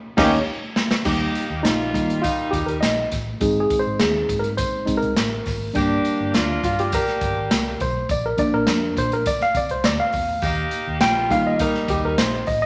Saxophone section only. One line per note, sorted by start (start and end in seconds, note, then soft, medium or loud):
0.17 0.32 C#4 loud
0.17 0.32 D#4 loud
0.17 0.33 G4 loud
1.06 1.61 A#3 loud
1.06 1.61 D#4 loud
1.06 1.61 G4 loud
1.63 2.20 G3 loud
1.63 2.19 A#3 loud
1.63 2.19 F4 loud
2.22 3.07 G3 loud
2.22 3.07 A#3 loud
2.22 3.07 D#4 loud
5.76 6.31 A#3 loud
5.76 6.31 D4 loud
5.76 6.31 G4 loud
6.34 6.89 A#3 loud
6.34 6.90 D4 loud
6.34 6.89 F4 loud
6.93 7.77 A#3 loud
6.93 7.76 D4 loud
6.93 7.76 G4 loud
10.42 10.98 A#3 loud
10.42 10.98 D#4 loud
10.42 10.98 G4 loud
11.01 11.57 G3 loud
11.01 11.56 A#3 loud
11.01 11.57 F4 loud
11.59 12.44 G3 loud
11.59 12.44 A#3 loud
11.59 12.44 D#4 loud